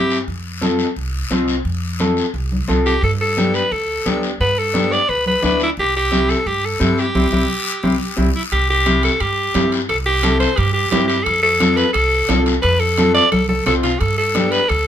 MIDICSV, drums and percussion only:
0, 0, Header, 1, 2, 480
1, 0, Start_track
1, 0, Key_signature, 0, "major"
1, 0, Tempo, 343249
1, 393, Time_signature, 4, 2, 24, 8
1, 20794, End_track
2, 0, Start_track
2, 0, Title_t, "Drums"
2, 147, Note_on_c, 9, 73, 70
2, 286, Note_off_c, 9, 73, 0
2, 391, Note_on_c, 9, 74, 56
2, 531, Note_off_c, 9, 74, 0
2, 869, Note_on_c, 9, 73, 70
2, 874, Note_on_c, 9, 63, 84
2, 1009, Note_off_c, 9, 73, 0
2, 1014, Note_off_c, 9, 63, 0
2, 1103, Note_on_c, 9, 73, 67
2, 1243, Note_off_c, 9, 73, 0
2, 1348, Note_on_c, 9, 74, 64
2, 1488, Note_off_c, 9, 74, 0
2, 1826, Note_on_c, 9, 73, 66
2, 1833, Note_on_c, 9, 63, 76
2, 1966, Note_off_c, 9, 73, 0
2, 1973, Note_off_c, 9, 63, 0
2, 2066, Note_on_c, 9, 73, 68
2, 2206, Note_off_c, 9, 73, 0
2, 2309, Note_on_c, 9, 74, 65
2, 2449, Note_off_c, 9, 74, 0
2, 2792, Note_on_c, 9, 73, 71
2, 2800, Note_on_c, 9, 63, 77
2, 2932, Note_off_c, 9, 73, 0
2, 2940, Note_off_c, 9, 63, 0
2, 3034, Note_on_c, 9, 73, 65
2, 3174, Note_off_c, 9, 73, 0
2, 3274, Note_on_c, 9, 74, 60
2, 3414, Note_off_c, 9, 74, 0
2, 3521, Note_on_c, 9, 63, 66
2, 3661, Note_off_c, 9, 63, 0
2, 3759, Note_on_c, 9, 73, 63
2, 3761, Note_on_c, 9, 63, 78
2, 3899, Note_off_c, 9, 73, 0
2, 3901, Note_off_c, 9, 63, 0
2, 4001, Note_on_c, 9, 73, 65
2, 4140, Note_off_c, 9, 73, 0
2, 4246, Note_on_c, 9, 74, 57
2, 4386, Note_off_c, 9, 74, 0
2, 4723, Note_on_c, 9, 73, 66
2, 4724, Note_on_c, 9, 63, 81
2, 4862, Note_off_c, 9, 73, 0
2, 4864, Note_off_c, 9, 63, 0
2, 4955, Note_on_c, 9, 73, 70
2, 5095, Note_off_c, 9, 73, 0
2, 5202, Note_on_c, 9, 74, 61
2, 5341, Note_off_c, 9, 74, 0
2, 5679, Note_on_c, 9, 63, 73
2, 5680, Note_on_c, 9, 73, 62
2, 5819, Note_off_c, 9, 63, 0
2, 5819, Note_off_c, 9, 73, 0
2, 5918, Note_on_c, 9, 73, 63
2, 6057, Note_off_c, 9, 73, 0
2, 6163, Note_on_c, 9, 74, 64
2, 6303, Note_off_c, 9, 74, 0
2, 6636, Note_on_c, 9, 63, 80
2, 6642, Note_on_c, 9, 73, 66
2, 6776, Note_off_c, 9, 63, 0
2, 6782, Note_off_c, 9, 73, 0
2, 6883, Note_on_c, 9, 73, 62
2, 7022, Note_off_c, 9, 73, 0
2, 7120, Note_on_c, 9, 74, 63
2, 7260, Note_off_c, 9, 74, 0
2, 7357, Note_on_c, 9, 63, 63
2, 7497, Note_off_c, 9, 63, 0
2, 7593, Note_on_c, 9, 73, 67
2, 7599, Note_on_c, 9, 63, 74
2, 7733, Note_off_c, 9, 73, 0
2, 7739, Note_off_c, 9, 63, 0
2, 7829, Note_on_c, 9, 73, 65
2, 7969, Note_off_c, 9, 73, 0
2, 8069, Note_on_c, 9, 74, 64
2, 8209, Note_off_c, 9, 74, 0
2, 8556, Note_on_c, 9, 73, 72
2, 8562, Note_on_c, 9, 63, 81
2, 8696, Note_off_c, 9, 73, 0
2, 8702, Note_off_c, 9, 63, 0
2, 8800, Note_on_c, 9, 73, 64
2, 8940, Note_off_c, 9, 73, 0
2, 9045, Note_on_c, 9, 74, 59
2, 9185, Note_off_c, 9, 74, 0
2, 9524, Note_on_c, 9, 73, 62
2, 9525, Note_on_c, 9, 63, 72
2, 9664, Note_off_c, 9, 73, 0
2, 9665, Note_off_c, 9, 63, 0
2, 9759, Note_on_c, 9, 73, 61
2, 9899, Note_off_c, 9, 73, 0
2, 10002, Note_on_c, 9, 74, 85
2, 10003, Note_on_c, 9, 63, 87
2, 10142, Note_off_c, 9, 74, 0
2, 10143, Note_off_c, 9, 63, 0
2, 10234, Note_on_c, 9, 74, 90
2, 10240, Note_on_c, 9, 63, 80
2, 10374, Note_off_c, 9, 74, 0
2, 10379, Note_off_c, 9, 63, 0
2, 10949, Note_on_c, 9, 74, 77
2, 10963, Note_on_c, 9, 63, 100
2, 11088, Note_off_c, 9, 74, 0
2, 11102, Note_off_c, 9, 63, 0
2, 11438, Note_on_c, 9, 74, 85
2, 11443, Note_on_c, 9, 63, 86
2, 11577, Note_off_c, 9, 74, 0
2, 11583, Note_off_c, 9, 63, 0
2, 11913, Note_on_c, 9, 65, 64
2, 11917, Note_on_c, 9, 74, 64
2, 12053, Note_off_c, 9, 65, 0
2, 12057, Note_off_c, 9, 74, 0
2, 12392, Note_on_c, 9, 65, 62
2, 12401, Note_on_c, 9, 73, 66
2, 12404, Note_on_c, 9, 63, 74
2, 12532, Note_off_c, 9, 65, 0
2, 12541, Note_off_c, 9, 73, 0
2, 12544, Note_off_c, 9, 63, 0
2, 12630, Note_on_c, 9, 65, 59
2, 12642, Note_on_c, 9, 73, 72
2, 12770, Note_off_c, 9, 65, 0
2, 12782, Note_off_c, 9, 73, 0
2, 12871, Note_on_c, 9, 65, 66
2, 12878, Note_on_c, 9, 74, 63
2, 13011, Note_off_c, 9, 65, 0
2, 13018, Note_off_c, 9, 74, 0
2, 13355, Note_on_c, 9, 65, 64
2, 13355, Note_on_c, 9, 66, 68
2, 13356, Note_on_c, 9, 73, 66
2, 13360, Note_on_c, 9, 63, 76
2, 13495, Note_off_c, 9, 65, 0
2, 13495, Note_off_c, 9, 66, 0
2, 13496, Note_off_c, 9, 73, 0
2, 13500, Note_off_c, 9, 63, 0
2, 13595, Note_on_c, 9, 65, 56
2, 13602, Note_on_c, 9, 73, 66
2, 13735, Note_off_c, 9, 65, 0
2, 13742, Note_off_c, 9, 73, 0
2, 13834, Note_on_c, 9, 65, 58
2, 13842, Note_on_c, 9, 74, 67
2, 13973, Note_off_c, 9, 65, 0
2, 13982, Note_off_c, 9, 74, 0
2, 14309, Note_on_c, 9, 65, 69
2, 14314, Note_on_c, 9, 63, 73
2, 14318, Note_on_c, 9, 73, 78
2, 14449, Note_off_c, 9, 65, 0
2, 14453, Note_off_c, 9, 63, 0
2, 14458, Note_off_c, 9, 73, 0
2, 14548, Note_on_c, 9, 65, 57
2, 14564, Note_on_c, 9, 73, 67
2, 14688, Note_off_c, 9, 65, 0
2, 14703, Note_off_c, 9, 73, 0
2, 14788, Note_on_c, 9, 65, 68
2, 14797, Note_on_c, 9, 74, 67
2, 14928, Note_off_c, 9, 65, 0
2, 14937, Note_off_c, 9, 74, 0
2, 15267, Note_on_c, 9, 63, 76
2, 15270, Note_on_c, 9, 65, 68
2, 15270, Note_on_c, 9, 66, 73
2, 15279, Note_on_c, 9, 73, 69
2, 15407, Note_off_c, 9, 63, 0
2, 15410, Note_off_c, 9, 65, 0
2, 15410, Note_off_c, 9, 66, 0
2, 15418, Note_off_c, 9, 73, 0
2, 15516, Note_on_c, 9, 65, 53
2, 15518, Note_on_c, 9, 73, 73
2, 15655, Note_off_c, 9, 65, 0
2, 15657, Note_off_c, 9, 73, 0
2, 15750, Note_on_c, 9, 65, 70
2, 15754, Note_on_c, 9, 74, 69
2, 15890, Note_off_c, 9, 65, 0
2, 15894, Note_off_c, 9, 74, 0
2, 16228, Note_on_c, 9, 65, 70
2, 16231, Note_on_c, 9, 63, 80
2, 16235, Note_on_c, 9, 73, 76
2, 16368, Note_off_c, 9, 65, 0
2, 16371, Note_off_c, 9, 63, 0
2, 16375, Note_off_c, 9, 73, 0
2, 16462, Note_on_c, 9, 65, 55
2, 16472, Note_on_c, 9, 73, 61
2, 16602, Note_off_c, 9, 65, 0
2, 16612, Note_off_c, 9, 73, 0
2, 16701, Note_on_c, 9, 65, 68
2, 16719, Note_on_c, 9, 74, 67
2, 16841, Note_off_c, 9, 65, 0
2, 16859, Note_off_c, 9, 74, 0
2, 17182, Note_on_c, 9, 65, 66
2, 17182, Note_on_c, 9, 66, 69
2, 17191, Note_on_c, 9, 73, 71
2, 17197, Note_on_c, 9, 63, 81
2, 17322, Note_off_c, 9, 65, 0
2, 17322, Note_off_c, 9, 66, 0
2, 17331, Note_off_c, 9, 73, 0
2, 17336, Note_off_c, 9, 63, 0
2, 17426, Note_on_c, 9, 65, 57
2, 17434, Note_on_c, 9, 73, 70
2, 17565, Note_off_c, 9, 65, 0
2, 17574, Note_off_c, 9, 73, 0
2, 17662, Note_on_c, 9, 65, 69
2, 17677, Note_on_c, 9, 74, 68
2, 17802, Note_off_c, 9, 65, 0
2, 17817, Note_off_c, 9, 74, 0
2, 18144, Note_on_c, 9, 65, 67
2, 18156, Note_on_c, 9, 73, 74
2, 18159, Note_on_c, 9, 63, 89
2, 18284, Note_off_c, 9, 65, 0
2, 18296, Note_off_c, 9, 73, 0
2, 18299, Note_off_c, 9, 63, 0
2, 18385, Note_on_c, 9, 65, 62
2, 18397, Note_on_c, 9, 73, 71
2, 18524, Note_off_c, 9, 65, 0
2, 18537, Note_off_c, 9, 73, 0
2, 18626, Note_on_c, 9, 65, 62
2, 18629, Note_on_c, 9, 63, 112
2, 18635, Note_on_c, 9, 74, 60
2, 18766, Note_off_c, 9, 65, 0
2, 18769, Note_off_c, 9, 63, 0
2, 18775, Note_off_c, 9, 74, 0
2, 18862, Note_on_c, 9, 63, 86
2, 19002, Note_off_c, 9, 63, 0
2, 19107, Note_on_c, 9, 64, 63
2, 19109, Note_on_c, 9, 65, 69
2, 19116, Note_on_c, 9, 73, 67
2, 19247, Note_off_c, 9, 64, 0
2, 19248, Note_off_c, 9, 65, 0
2, 19255, Note_off_c, 9, 73, 0
2, 19346, Note_on_c, 9, 65, 52
2, 19347, Note_on_c, 9, 64, 62
2, 19353, Note_on_c, 9, 73, 71
2, 19485, Note_off_c, 9, 65, 0
2, 19487, Note_off_c, 9, 64, 0
2, 19493, Note_off_c, 9, 73, 0
2, 19586, Note_on_c, 9, 65, 63
2, 19594, Note_on_c, 9, 74, 71
2, 19726, Note_off_c, 9, 65, 0
2, 19734, Note_off_c, 9, 74, 0
2, 20063, Note_on_c, 9, 65, 66
2, 20076, Note_on_c, 9, 63, 82
2, 20077, Note_on_c, 9, 73, 73
2, 20203, Note_off_c, 9, 65, 0
2, 20216, Note_off_c, 9, 63, 0
2, 20217, Note_off_c, 9, 73, 0
2, 20303, Note_on_c, 9, 65, 60
2, 20312, Note_on_c, 9, 73, 66
2, 20442, Note_off_c, 9, 65, 0
2, 20452, Note_off_c, 9, 73, 0
2, 20547, Note_on_c, 9, 65, 60
2, 20551, Note_on_c, 9, 74, 65
2, 20687, Note_off_c, 9, 65, 0
2, 20691, Note_off_c, 9, 74, 0
2, 20794, End_track
0, 0, End_of_file